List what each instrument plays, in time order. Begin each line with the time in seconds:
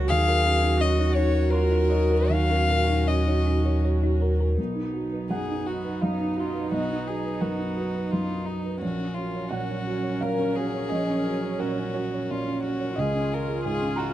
Already playing: sub bass C#2, felt piano C#2 C#3 C#4 D#4 F#4 A#4 C#5
0.08 sub bass D#2, felt piano D#2, string section F#3 C#4 A#4, synth pluck D#4, viola F#4, cello G#4, violin F5
0.28 felt piano F#4, synth pluck A#4
0.46 felt piano C#4
0.62 synth pluck D#4, felt piano F#4
0.77 felt piano C#4, cello F#4, violin D#5
0.82 synth pluck C#5
0.98 felt piano D#4, synth pluck C#5
1.15 felt piano C#4, synth pluck D#4, violin C#5
1.35 felt piano F#4, synth pluck C#5
1.51 cello F4, violin A#4, felt piano A#4, synth pluck C#5
1.70 synth pluck D#4, felt piano F#4
1.89 cello D#4, synth pluck A#4, felt piano C#5
2.10 felt piano F#4, synth pluck A#4
2.30 felt piano D#2, cello C#4, synth pluck D#4, violin F5
2.49 felt piano C#4, synth pluck A#4
2.68 felt piano A#2, synth pluck A#4
2.88 synth pluck D#4, felt piano F#4
3.07 felt piano C#4, synth pluck C#5, violin D#5
3.26 felt piano D#4, synth pluck C#5
3.45 felt piano C#4, synth pluck D#4
3.64 felt piano F#4, synth pluck C#5
3.83 felt piano A#4, synth pluck C#5
4.02 synth pluck D#4, felt piano F#4
4.20 synth pluck A#4, felt piano C#5
4.39 felt piano F#4, synth pluck A#4
4.58 felt piano B1, string section F#3 B3 D#4, viola D#4
4.75 felt piano D#4
4.93 felt piano F#4
5.12 felt piano B4
5.30 felt piano F#2 F#5, violin G#4
5.49 felt piano D#4
5.66 felt piano F#4, violin F#4
5.85 felt piano B4
6.02 felt piano F#2 F5, violin D#4
6.20 felt piano D#4
6.37 violin F4, felt piano F#4
6.53 felt piano B4
6.71 felt piano B1 D#5, violin F#4
6.89 felt piano D#4
7.07 felt piano F#4, violin G#4
7.25 felt piano B4
7.41 felt piano F#2 A#4, violin F#4
7.59 felt piano D#4
7.77 felt piano F#4 B4
7.95 felt piano B4
8.11 felt piano F#2, violin F4
8.31 felt piano D#4
8.46 violin D#4, felt piano F#4
8.65 felt piano B4
8.79 felt piano A#1, string section F#3 C#4 A#4, viola C#4, violin F#4
8.99 felt piano C#4
9.14 violin F4, felt piano F#4
9.35 felt piano C#5
9.49 felt piano A#2 F#5, violin F#4
9.69 felt piano C#4
9.87 felt piano F#4
10.03 felt piano C#5
10.21 felt piano A#2 F5, violin A#4
10.39 felt piano C#4
10.55 felt piano F#4, violin G#4
10.74 felt piano C#5
10.89 felt piano A#1 D#5
11.10 felt piano C#4
11.27 felt piano F#4
11.45 felt piano C#5
11.59 felt piano A#2 A#4, violin F#4
11.80 felt piano C#4
11.94 felt piano F#4 C#5
12.14 felt piano C#5
12.31 felt piano A#2, violin F4
12.47 felt piano C#4
12.63 violin F#4, felt piano F#4
12.80 felt piano C#5
12.94 felt piano C#2 D#5, string section D#3 C#4 G#4, viola F4
12.99 violin G#4
13.15 felt piano C#4
13.31 felt piano F4, violin A#4
13.48 felt piano G#4
13.64 felt piano G#2, violin G#4
13.82 felt piano C#4
13.96 felt piano F4 A#5, violin F#4